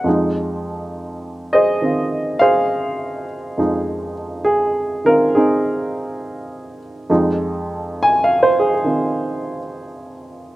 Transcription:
0, 0, Header, 1, 2, 480
1, 0, Start_track
1, 0, Key_signature, -4, "minor"
1, 0, Tempo, 879765
1, 32, Time_signature, 4, 2, 24, 8
1, 5761, End_track
2, 0, Start_track
2, 0, Title_t, "Upright piano"
2, 0, Program_c, 0, 0
2, 0, Control_c, 0, 64, 127
2, 22, Note_on_c, 0, 41, 47
2, 30, Note_on_c, 0, 53, 42
2, 38, Control_c, 0, 64, 0
2, 42, Note_on_c, 0, 56, 47
2, 48, Note_on_c, 0, 63, 53
2, 149, Control_c, 0, 64, 127
2, 834, Note_on_c, 0, 75, 74
2, 841, Note_on_c, 0, 68, 52
2, 844, Note_on_c, 0, 72, 54
2, 990, Note_on_c, 0, 51, 43
2, 998, Note_on_c, 0, 60, 35
2, 1007, Note_on_c, 0, 65, 43
2, 1293, Note_off_c, 0, 75, 0
2, 1306, Note_on_c, 0, 77, 90
2, 1309, Note_off_c, 0, 68, 0
2, 1309, Note_off_c, 0, 72, 0
2, 1318, Note_on_c, 0, 68, 68
2, 1318, Note_on_c, 0, 72, 66
2, 1770, Note_off_c, 0, 77, 0
2, 1943, Note_off_c, 0, 41, 0
2, 1949, Note_off_c, 0, 53, 0
2, 1951, Note_off_c, 0, 51, 0
2, 1951, Note_off_c, 0, 56, 0
2, 1951, Note_on_c, 0, 41, 42
2, 1953, Note_off_c, 0, 63, 0
2, 1955, Note_off_c, 0, 60, 0
2, 1958, Note_on_c, 0, 53, 41
2, 1959, Note_off_c, 0, 65, 0
2, 1959, Note_on_c, 0, 56, 45
2, 1961, Note_on_c, 0, 63, 49
2, 2255, Note_off_c, 0, 68, 0
2, 2255, Note_off_c, 0, 72, 0
2, 2425, Note_on_c, 0, 68, 75
2, 2752, Note_on_c, 0, 51, 37
2, 2761, Note_on_c, 0, 60, 36
2, 2761, Note_on_c, 0, 70, 81
2, 2763, Note_off_c, 0, 68, 0
2, 2768, Note_on_c, 0, 65, 47
2, 2795, Note_off_c, 0, 70, 0
2, 2918, Note_on_c, 0, 68, 67
2, 2919, Note_off_c, 0, 60, 0
2, 2921, Note_off_c, 0, 63, 0
2, 2928, Note_on_c, 0, 60, 48
2, 2929, Note_on_c, 0, 63, 53
2, 3698, Note_off_c, 0, 68, 0
2, 3857, Note_off_c, 0, 60, 0
2, 3858, Note_off_c, 0, 63, 0
2, 3864, Note_off_c, 0, 41, 0
2, 3868, Note_off_c, 0, 53, 0
2, 3869, Note_off_c, 0, 51, 0
2, 3869, Note_off_c, 0, 56, 0
2, 3872, Note_on_c, 0, 41, 56
2, 3876, Note_on_c, 0, 53, 43
2, 3877, Note_off_c, 0, 65, 0
2, 3877, Note_on_c, 0, 56, 49
2, 3878, Control_c, 0, 64, 0
2, 3880, Note_on_c, 0, 63, 64
2, 3974, Control_c, 0, 64, 127
2, 4379, Note_on_c, 0, 80, 84
2, 4496, Note_on_c, 0, 77, 75
2, 4523, Note_off_c, 0, 80, 0
2, 4598, Note_on_c, 0, 72, 77
2, 4631, Note_off_c, 0, 72, 0
2, 4662, Note_off_c, 0, 77, 0
2, 4689, Note_on_c, 0, 68, 72
2, 4762, Note_off_c, 0, 68, 0
2, 4771, Note_on_c, 0, 68, 59
2, 4825, Note_on_c, 0, 51, 40
2, 4832, Note_on_c, 0, 60, 35
2, 4839, Note_on_c, 0, 65, 42
2, 5232, Note_off_c, 0, 68, 0
2, 5747, Note_off_c, 0, 41, 0
2, 5761, Note_off_c, 0, 51, 0
2, 5761, Note_off_c, 0, 53, 0
2, 5761, Note_off_c, 0, 56, 0
2, 5761, Note_off_c, 0, 60, 0
2, 5761, Note_off_c, 0, 63, 0
2, 5761, Note_off_c, 0, 65, 0
2, 5761, End_track
0, 0, End_of_file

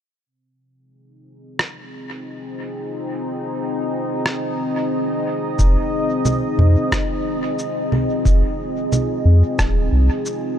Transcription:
0, 0, Header, 1, 4, 480
1, 0, Start_track
1, 0, Key_signature, -4, "minor"
1, 0, Tempo, 666667
1, 186, Time_signature, 4, 2, 24, 8
1, 7623, End_track
2, 0, Start_track
2, 0, Title_t, "Ambient pad"
2, 0, Program_c, 0, 92
2, 186, Note_on_c, 0, 60, 76
2, 347, Note_on_c, 0, 65, 62
2, 553, Note_on_c, 0, 68, 82
2, 574, Note_on_c, 0, 63, 68
2, 1922, Note_on_c, 0, 75, 81
2, 7623, Note_off_c, 0, 60, 0
2, 7623, Note_off_c, 0, 63, 0
2, 7623, Note_off_c, 0, 65, 0
2, 7623, Note_off_c, 0, 68, 0
2, 7623, Note_off_c, 0, 75, 0
2, 7623, End_track
3, 0, Start_track
3, 0, Title_t, "Sub bass"
3, 0, Program_c, 1, 38
3, 4025, Note_on_c, 1, 29, 88
3, 4152, Note_off_c, 1, 29, 0
3, 4740, Note_on_c, 1, 41, 92
3, 4870, Note_off_c, 1, 41, 0
3, 5943, Note_on_c, 1, 29, 91
3, 6071, Note_off_c, 1, 29, 0
3, 6661, Note_on_c, 1, 41, 92
3, 6790, Note_off_c, 1, 41, 0
3, 6903, Note_on_c, 1, 27, 79
3, 7122, Note_off_c, 1, 27, 0
3, 7142, Note_on_c, 1, 36, 83
3, 7271, Note_off_c, 1, 36, 0
3, 7623, End_track
4, 0, Start_track
4, 0, Title_t, "Drums"
4, 1147, Note_on_c, 9, 37, 75
4, 1219, Note_off_c, 9, 37, 0
4, 3065, Note_on_c, 9, 37, 83
4, 3137, Note_off_c, 9, 37, 0
4, 4024, Note_on_c, 9, 82, 49
4, 4025, Note_on_c, 9, 36, 93
4, 4096, Note_off_c, 9, 82, 0
4, 4097, Note_off_c, 9, 36, 0
4, 4502, Note_on_c, 9, 64, 75
4, 4502, Note_on_c, 9, 82, 50
4, 4574, Note_off_c, 9, 64, 0
4, 4574, Note_off_c, 9, 82, 0
4, 4744, Note_on_c, 9, 64, 59
4, 4816, Note_off_c, 9, 64, 0
4, 4983, Note_on_c, 9, 36, 97
4, 4985, Note_on_c, 9, 37, 82
4, 4985, Note_on_c, 9, 82, 51
4, 5055, Note_off_c, 9, 36, 0
4, 5057, Note_off_c, 9, 37, 0
4, 5057, Note_off_c, 9, 82, 0
4, 5463, Note_on_c, 9, 82, 48
4, 5535, Note_off_c, 9, 82, 0
4, 5704, Note_on_c, 9, 64, 78
4, 5776, Note_off_c, 9, 64, 0
4, 5943, Note_on_c, 9, 36, 103
4, 5945, Note_on_c, 9, 82, 50
4, 6015, Note_off_c, 9, 36, 0
4, 6017, Note_off_c, 9, 82, 0
4, 6425, Note_on_c, 9, 64, 72
4, 6425, Note_on_c, 9, 82, 50
4, 6497, Note_off_c, 9, 64, 0
4, 6497, Note_off_c, 9, 82, 0
4, 6904, Note_on_c, 9, 36, 96
4, 6905, Note_on_c, 9, 37, 89
4, 6905, Note_on_c, 9, 82, 51
4, 6976, Note_off_c, 9, 36, 0
4, 6977, Note_off_c, 9, 37, 0
4, 6977, Note_off_c, 9, 82, 0
4, 7385, Note_on_c, 9, 82, 48
4, 7457, Note_off_c, 9, 82, 0
4, 7623, End_track
0, 0, End_of_file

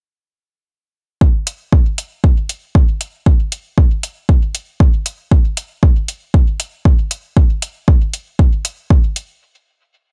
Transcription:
0, 0, Header, 1, 2, 480
1, 0, Start_track
1, 0, Tempo, 512821
1, 1135, Time_signature, 4, 2, 24, 8
1, 9474, End_track
2, 0, Start_track
2, 0, Title_t, "Drums"
2, 1135, Note_on_c, 9, 36, 114
2, 1228, Note_off_c, 9, 36, 0
2, 1375, Note_on_c, 9, 42, 77
2, 1468, Note_off_c, 9, 42, 0
2, 1615, Note_on_c, 9, 36, 109
2, 1708, Note_off_c, 9, 36, 0
2, 1854, Note_on_c, 9, 42, 73
2, 1948, Note_off_c, 9, 42, 0
2, 2094, Note_on_c, 9, 36, 105
2, 2188, Note_off_c, 9, 36, 0
2, 2334, Note_on_c, 9, 42, 77
2, 2428, Note_off_c, 9, 42, 0
2, 2574, Note_on_c, 9, 36, 120
2, 2668, Note_off_c, 9, 36, 0
2, 2815, Note_on_c, 9, 42, 65
2, 2908, Note_off_c, 9, 42, 0
2, 3054, Note_on_c, 9, 36, 114
2, 3148, Note_off_c, 9, 36, 0
2, 3295, Note_on_c, 9, 42, 83
2, 3389, Note_off_c, 9, 42, 0
2, 3534, Note_on_c, 9, 36, 112
2, 3628, Note_off_c, 9, 36, 0
2, 3775, Note_on_c, 9, 42, 70
2, 3869, Note_off_c, 9, 42, 0
2, 4014, Note_on_c, 9, 36, 110
2, 4108, Note_off_c, 9, 36, 0
2, 4255, Note_on_c, 9, 42, 82
2, 4349, Note_off_c, 9, 42, 0
2, 4494, Note_on_c, 9, 36, 125
2, 4588, Note_off_c, 9, 36, 0
2, 4735, Note_on_c, 9, 42, 71
2, 4828, Note_off_c, 9, 42, 0
2, 4974, Note_on_c, 9, 36, 124
2, 5068, Note_off_c, 9, 36, 0
2, 5215, Note_on_c, 9, 42, 82
2, 5308, Note_off_c, 9, 42, 0
2, 5455, Note_on_c, 9, 36, 117
2, 5548, Note_off_c, 9, 36, 0
2, 5695, Note_on_c, 9, 42, 73
2, 5788, Note_off_c, 9, 42, 0
2, 5934, Note_on_c, 9, 36, 119
2, 6028, Note_off_c, 9, 36, 0
2, 6175, Note_on_c, 9, 42, 81
2, 6268, Note_off_c, 9, 42, 0
2, 6414, Note_on_c, 9, 36, 119
2, 6508, Note_off_c, 9, 36, 0
2, 6654, Note_on_c, 9, 42, 72
2, 6748, Note_off_c, 9, 42, 0
2, 6894, Note_on_c, 9, 36, 124
2, 6988, Note_off_c, 9, 36, 0
2, 7135, Note_on_c, 9, 42, 85
2, 7229, Note_off_c, 9, 42, 0
2, 7374, Note_on_c, 9, 36, 121
2, 7468, Note_off_c, 9, 36, 0
2, 7615, Note_on_c, 9, 42, 75
2, 7708, Note_off_c, 9, 42, 0
2, 7854, Note_on_c, 9, 36, 117
2, 7948, Note_off_c, 9, 36, 0
2, 8095, Note_on_c, 9, 42, 80
2, 8188, Note_off_c, 9, 42, 0
2, 8334, Note_on_c, 9, 36, 123
2, 8428, Note_off_c, 9, 36, 0
2, 8575, Note_on_c, 9, 42, 72
2, 8668, Note_off_c, 9, 42, 0
2, 9474, End_track
0, 0, End_of_file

